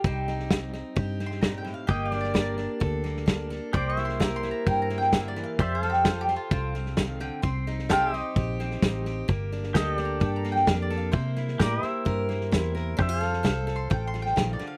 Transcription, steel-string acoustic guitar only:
\new Staff \with { instrumentName = "Steel-string acoustic guitar" } { \time 4/4 \key c \dorian \tempo 4 = 130 << { <g c' ees'>8 ees'8 ees'8 ees'8 g'8 c'4. | bes8 d'4 d'8 a'8 bes8 d'8 a'8 | bes8 e'8 bes'8 e'8 bes'8 bes4. | f'8 a'8 f'8 f'8 c'8 f'4. |
c'8 ees'8 g'8 ees'8 g'8 c'8 ees'8 g'8 | bes8 d'8 a'8 d'8 a'8 bes8 d'8 a'8 | bes8 e'8 bes'8 e'8 bes'8 bes8 e'8 bes'8 | d'16 f'16 a'8 a'8 a'8 a'8 f'4. | } \\ { c4 g4 g,4 bes,8 a,8 | g,4 g4 d4 g4 | c4 g4 g,4 d8 e8 | f4 c'4 c4 ees8 d8 |
c4 g4 g,4 g4 | g,4 g4 d4 g4 | c4 g4 g,4 g4 | f4 c'4 c4 ees8 d8 | } >> }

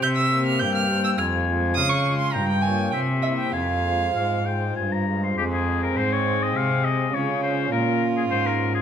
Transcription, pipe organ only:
<<
  \new Staff \with { instrumentName = "Pipe organ" } { \time 3/4 \key f \minor \tempo 4 = 103 r8 <bes g' c''>4 <bes g' c''>8 r8 <aes f' c''>8 | r8 <aes f' des''>8 r8 <bes f' des''>8 r8 <bes e' c''>8 | r8 <aes f' c''>4 <aes f' c''>4 <aes f' c''>8 | <aes c' aes'>2. |
<aes des' f'>2. | }
  \new Staff \with { instrumentName = "Pipe organ" } { \clef bass \time 3/4 \key f \minor c4 g,4 f,4 | des4 g,4 c4 | f,4 aes,4 g,4 | f,4 aes,4 c4 |
des4 bes,4 aes,4 | }
>>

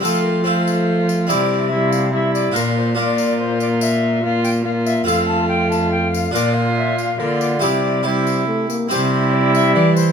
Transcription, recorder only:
\new Staff \with { instrumentName = "Recorder" } { \time 3/4 \key c \mixolydian \tempo 4 = 143 a'8 bes'8 c''4. r8 | d''4 e''8 f''8 e''8 d''8 | bes'8 c''8 d''4 c''8 d''8 | e''4 f''8 g''8 f''8 e''8 |
f''8 a''8 g''8 a''8 g''8 f''8 | d''8 f''8 e''8 f''8 bes'8 d''8 | d''4 c''4 r4 | c''4 d''8 e''8 d''8 c''8 | }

